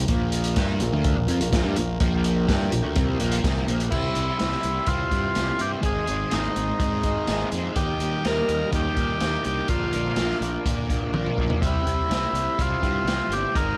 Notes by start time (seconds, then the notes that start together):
0.08 A#1 A#2 F3 A#3 A#4 F5, kick, closed hi-hat
0.32 closed hi-hat
0.44 closed hi-hat
0.56 G2 G3 D4 G4, kick, snare, closed hi-hat
0.80 A#1 A#2 F3, closed hi-hat
0.93 D2 D3 A3 D4
1.04 kick, closed hi-hat
1.17 A#1 A#2 F3
1.27 F2 F3 C4, closed hi-hat
1.40 A#1 A#2 F3, closed hi-hat
1.52 A#1 A#2 F3, kick, snare, closed hi-hat
1.64 G2 G3 D4
1.76 A#1 A#2 F3, closed hi-hat
2.00 A#1 A#2 F3 A#3 G5, kick, closed hi-hat
2.24 closed hi-hat
2.48 G2 G3 D4 G4, kick, snare, closed hi-hat
2.72 A#1 A#2 F3, closed hi-hat
2.83 D2 D3 A3
2.95 C2 C3 G3 C4, kick, closed hi-hat
3.19 A#1 A#2 F3 A#3, closed hi-hat
3.32 closed hi-hat
3.43 C2 C3 G3 C4, kick, snare, closed hi-hat
3.67 A#1 A#2 F3 A#3, closed hi-hat
3.80 closed hi-hat
3.91 C2 C3 G3 C4 E4 G4 E5 C6, kick, crash
3.95 C5
4.15 C2 C4 E4 G4, closed hi-hat
4.39 C2 G3 C4 E4 G4, snare, closed hi-hat
4.53 snare
4.63 C2, closed hi-hat
4.86 C2 C3 G3 C4 E4 F4 G4, kick, closed hi-hat
5.11 G2 C4 E4 G4, kick, closed hi-hat
5.35 C2 G3 C4 E4 G4, snare, closed hi-hat
5.58 G2 C4 E4 G4, closed hi-hat
5.81 G#1 G#2 D#3 G#3 C4 D#4 G#4 C5 D#5, kick, closed hi-hat
5.85 G#4
6.06 G#1 G#3 C4 D#4 G#4, closed hi-hat
6.30 G#1 G#3 C4 D#4 G#4, snare, closed hi-hat
6.56 G#1, closed hi-hat
6.78 G#2 D#3 G#3 C4 D#4 G#4, kick, closed hi-hat
7.03 G#3 C4 D#4 G#4, kick, closed hi-hat
7.27 G#1 G#3 C4 D#4 G#4, snare, closed hi-hat
7.51 F2 G#3 C4 D#4 G#4, closed hi-hat
7.75 D#2 D#3 G3 A#3 D#4 G4 A#4 G5 D#6, kick, closed hi-hat
8.00 D#2 A#3 D#4 G4, closed hi-hat
8.24 D#2 G3 A#3 D#4 G4 A#4, snare, closed hi-hat
8.49 D#2, closed hi-hat
8.71 D#2 D#3 G3 A#3 D#4 G4, kick, closed hi-hat
8.96 A#2 A#3 D#4 G4, kick, closed hi-hat
9.20 D#2 G3 A#3 D#4 G4, snare, closed hi-hat
9.45 C2 A#3 D#4 G4, closed hi-hat
9.68 A#1 A#2 D3 F3 A#3 D4 F4 A#4 D5 F5 D6, kick, closed hi-hat
9.93 A#1 F3 A#3 D4 A#4, closed hi-hat
10.16 A#1 F3 A#3 D4 A#4, snare, closed hi-hat
10.30 snare
10.41 A#1, closed hi-hat
10.65 A#2 D3 F3 A#3 D4 A#4, kick, closed hi-hat
10.89 F3 A#3 D4 A#4, kick, closed hi-hat
11.13 A#1 F3 A#3 D4 A#4, high tom
11.27 mid tom
11.38 B1 F3 A#3 D4 A#4, kick
11.50 floor tom
11.60 C2 C3 G3 C4 E4 G4 C5 E5 G5 E6, kick, closed hi-hat
11.66 E4
11.85 C2 C4 E4 G4, closed hi-hat
12.10 C2 G3 C4 E4 G4, snare, closed hi-hat
12.15 E4
12.33 C2, closed hi-hat
12.59 C2 C3 G3 C4 E4 F4 G4, kick, closed hi-hat
12.83 G2 C4 E4 G4, kick, closed hi-hat
13.05 C2 G3 C4 E4 G4, snare, closed hi-hat
13.29 G1 E4 G4, closed hi-hat
13.33 C4 G4
13.54 G#1 G#2 D#3 G#3 C4 D#4 G#4 A#4 D#5 G#5 D#6, kick, closed hi-hat